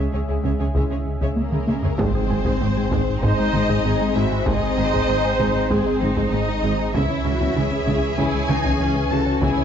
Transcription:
Already playing: sub bass C#2, analog synth pad G#3 C#4 G#4 E5
0.13 double bass section C#2, analog synth bass C#2, cello section C#3, viola section G#3 G#4, synth arpeggio sound C#4, violin section G#4 C#5
0.29 analog synth bass C#2, cello section C#3, viola section G#3 G#4, synth arpeggio sound C#4, violin section E4 G#4
0.44 double bass section C#2, analog synth bass C#2, synth arpeggio sound C#3, cello section C#3, viola section G#3 G#4, violin section C#5 E5, taiko
0.59 analog synth bass C#2, cello section C#3, viola section G#3 G#4, synth arpeggio sound C#4, violin section G#4 C#5
0.74 double bass section C#2, analog synth bass C#2, synth arpeggio sound C#3, cello section C#3, viola section G#3 G#4, french horn section G#3 E4, violin section C#5 E5, taiko
0.90 cello section C#3, analog synth bass C#3, viola section G#3 G#4, synth arpeggio sound G#3, violin section G#4 C#5
1.07 analog synth bass C#2
1.21 analog synth bass C#2, synth arpeggio sound C#3, cello section C#3, viola section G#3 G#4, violin section C#5 E5, taiko
1.37 analog synth bass C#3, violin section A#3 A#4, taiko high
1.52 cello section C#3, analog synth bass C#3, synth arpeggio sound G#3, viola section G#3 G#4, violin section E4 G#4, taiko mid
1.67 double bass section C#2, analog synth bass C#2, synth arpeggio sound C#3, cello section C#3, viola section G#3 G#4, violin section C#5 E5, taiko high
1.83 cello section C#3, analog synth bass C#3, viola section G#3 G#4, synth arpeggio sound G#3, violin section G#4 C#5, taiko low
1.98 double bass section G#1, sub bass G#1, cello section G#2, analog synth bass G#2, analog synth pad G#3 C4 G#4 C5, synth arpeggio sound G#3, french horn section G#3 C4, violin section C4 C5, taiko, impact
2.15 analog synth bass G#2, synth arpeggio sound G#4
2.30 double bass section G#1, cello section G#2, analog synth bass G#2, synth arpeggio sound G#4
2.45 analog synth bass G#2, synth arpeggio sound G#3, taiko
2.61 double bass section G#1, cello section G#2, analog synth bass G#2, synth arpeggio sound C4
2.77 analog synth bass G#2, synth arpeggio sound G#4
2.91 double bass section G#1, cello section G#2, analog synth bass G#2, synth arpeggio sound G#3, taiko
3.09 analog synth bass G#2
3.22 double bass section G#1, cello section G#2, analog synth bass G#2, synth arpeggio sound G#3, violin section D#4 D#5, viola section C5, taiko
3.39 analog synth bass G#3, synth arpeggio sound D#4
3.54 double bass section G#1, cello section G#2, analog synth bass G#2, taiko mid
3.69 analog synth bass G#2, synth arpeggio sound G#3, taiko
3.85 double bass section G#1, cello section G#2, analog synth bass G#2, synth arpeggio sound C4, viola section G#4
4.01 analog synth bass G#3, synth arpeggio sound D#4
4.15 double bass section G#1, cello section G#2, analog synth bass G#2, synth arpeggio sound G#3, violin section E4 E5, viola section F#4
4.32 analog synth bass G#2, synth arpeggio sound G#4
4.46 double bass section G#1, cello section G#2, analog synth bass G#2, synth arpeggio sound G#3, violin section D#4 D#5, viola section G#4, taiko
4.62 analog synth bass G#2, synth arpeggio sound G#4
4.78 double bass section G#1, analog synth bass G#2, cello section G#2, synth arpeggio sound G#4, viola section C5
4.93 analog synth bass G#2, synth arpeggio sound G#3, taiko
5.08 double bass section G#1, analog synth bass G#2, cello section G#2, synth arpeggio sound C4
5.24 analog synth bass G#2, synth arpeggio sound G#4
5.39 double bass section G#1, cello section G#2, analog synth bass G#2, synth arpeggio sound G#3, taiko
5.55 analog synth bass G#2
5.70 double bass section G#1, cello section G#2, analog synth bass G#2, synth arpeggio sound G#3, violin section C4 C5, viola section G#4, taiko
5.86 analog synth bass G#3, synth arpeggio sound D#4
6.01 double bass section G#1, analog synth bass G#2, cello section G#2, viola section D#4, taiko mid
6.17 analog synth bass G#2, synth arpeggio sound G#3, taiko
6.32 double bass section G#1, analog synth bass G#2, cello section G#2, synth arpeggio sound C4, violin section D#4 D#5
6.48 analog synth bass G#3, synth arpeggio sound D#4
6.64 double bass section G#1, cello section G#2, analog synth bass G#2, synth arpeggio sound G#3
6.79 analog synth bass G#2, synth arpeggio sound G#4
6.94 sub bass C#2, analog synth bass C#2, double bass section C#2, cello section C#3, synth arpeggio sound C#3, french horn section E3 C#4, analog synth pad E3 C#4 C#5, violin section E4 E5, viola section E4, taiko
7.10 analog synth bass C#2, synth arpeggio sound C#4
7.25 double bass section C#2, analog synth bass C#2, cello section C#3, synth arpeggio sound C#4, viola section F#4
7.41 analog synth bass C#2, synth arpeggio sound C#3, taiko
7.56 double bass section C#2, analog synth bass C#2, cello section C#3, synth arpeggio sound E3, viola section G#4
7.72 analog synth bass C#2, synth arpeggio sound C#4
7.87 double bass section C#2, analog synth bass C#2, cello section C#3, synth arpeggio sound C#3, taiko
8.03 analog synth bass C#2
8.18 analog synth bass C#2, double bass section C#2, synth arpeggio sound C#3, cello section C#3, viola section E4, violin section G#4 G#5, taiko
8.34 analog synth bass C#3, synth arpeggio sound G#3
8.49 analog synth bass C#2, double bass section C#2, cello section C#3, viola section D#4, taiko mid
8.64 analog synth bass C#2, synth arpeggio sound C#3, taiko
8.80 double bass section C#2, analog synth bass C#2, cello section C#3, synth arpeggio sound E3, viola section C#4
8.95 analog synth bass C#3, synth arpeggio sound G#3
9.11 double bass section C#2, analog synth bass C#2, cello section C#3, synth arpeggio sound C#3, viola section F#4, violin section A4 A5
9.26 analog synth bass C#2, synth arpeggio sound C#4
9.42 double bass section C#2, analog synth bass C#2, cello section C#3, synth arpeggio sound C#3, viola section E4, violin section G#4 G#5, taiko
9.57 analog synth bass C#2, synth arpeggio sound C#4

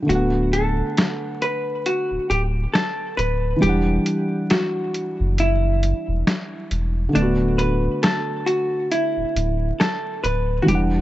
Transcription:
0.02 felt piano D3
0.07 sub bass D1, felt piano A3, hollow-body jazz guitar F#4, closed hi-hat
0.11 felt piano B3
0.15 felt piano F#5
0.53 hollow-body jazz guitar A4, closed hi-hat
0.97 snare, closed hi-hat
1.42 hollow-body jazz guitar B4, closed hi-hat
1.86 hollow-body jazz guitar F#4, closed hi-hat
2.11 sub bass D1
2.30 sub bass D1, hollow-body jazz guitar G4, closed hi-hat
2.74 hollow-body jazz guitar A4, snare, closed hi-hat
3.17 sub bass D1, hollow-body jazz guitar B4, closed hi-hat
3.56 felt piano E3
3.60 sub bass E1, felt piano G3, hollow-body jazz guitar G4, closed hi-hat
3.65 felt piano D4
3.69 felt piano F#5
4.06 closed hi-hat
4.50 hollow-body jazz guitar F#4, snare, closed hi-hat
4.94 closed hi-hat
5.20 sub bass F#1
5.38 hollow-body jazz guitar E4, closed hi-hat
5.83 closed hi-hat
6.08 sub bass E1
6.27 snare, closed hi-hat
6.71 sub bass E1, closed hi-hat
7.09 felt piano D3
7.13 sub bass D1, felt piano A3, hollow-body jazz guitar D4, closed hi-hat
7.17 felt piano B3
7.22 felt piano F#4
7.58 hollow-body jazz guitar B4, closed hi-hat
8.03 hollow-body jazz guitar A4, snare, closed hi-hat
8.46 hollow-body jazz guitar F#4, closed hi-hat
8.91 hollow-body jazz guitar E4, closed hi-hat
9.17 sub bass D1
9.36 sub bass D1, closed hi-hat
9.80 hollow-body jazz guitar A4, snare, closed hi-hat
10.24 sub bass D1, hollow-body jazz guitar B4, closed hi-hat
10.62 felt piano E3 G3, hollow-body jazz guitar F#4
10.68 sub bass E1, felt piano D4, hollow-body jazz guitar G4, closed hi-hat
10.75 felt piano F#5

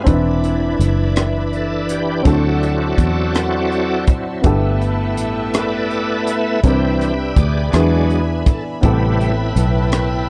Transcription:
Already playing: string section B5
0.04 fingered electric bass E1, upright piano E3 C4 D4 D#4, tonewheel organ B4, string section D5 E5, kick, closed hi-hat
0.08 tonewheel organ E3 D4, upright piano B4
0.14 upright piano E4
0.44 closed hi-hat
0.79 fingered electric bass F#1, closed hi-hat
1.16 cross-stick, closed hi-hat
1.53 tonewheel organ A4, closed hi-hat
1.89 tonewheel organ G4, closed hi-hat
2.23 fingered electric bass D2, upright piano D3 C4 D4 E4, tonewheel organ F#3 C4, string section F#5 A5, kick, closed hi-hat
2.27 tonewheel organ E4 F#4 A4 D5, upright piano A4
2.32 upright piano F#4
2.63 closed hi-hat
2.98 fingered electric bass E2, kick, closed hi-hat
3.35 cross-stick, closed hi-hat
3.72 closed hi-hat
4.07 tonewheel organ F#3 C4 E4, kick, closed hi-hat
4.42 fingered electric bass G1, upright piano G2 B3 E4 G4, tonewheel organ A3, string section E5 G5 B5, kick, closed hi-hat
4.46 tonewheel organ B3 E4, upright piano A4
4.82 closed hi-hat
5.17 fingered electric bass A1, closed hi-hat
5.54 tonewheel organ A4 B4, cross-stick, closed hi-hat
5.58 tonewheel organ D5
5.91 closed hi-hat
6.27 tonewheel organ E5, closed hi-hat
6.63 fingered electric bass C2, upright piano C3 C4 D4 E4 A#4, tonewheel organ E3, string section D5 G5, kick, closed hi-hat
6.67 tonewheel organ C4 D4 G4 B4 E5
6.72 upright piano B4
7.01 cross-stick, closed hi-hat
7.36 fingered electric bass D2, tonewheel organ G#4 B4 D5, kick, closed hi-hat
7.72 fingered electric bass E2, upright piano E3 B3 D4 E4 G#4, tonewheel organ F#3 G#3 D4, string section E5 G#5, cross-stick, closed hi-hat
8.10 closed hi-hat
8.46 tonewheel organ A4, kick, closed hi-hat
8.81 fingered electric bass A1, upright piano A2 B3 C4 G4, tonewheel organ C3 G3 A3 E4 B4, string section B4 G5 A5, kick, closed hi-hat
8.86 upright piano A4
9.21 closed hi-hat
9.56 fingered electric bass B1, closed hi-hat
9.92 cross-stick, closed hi-hat

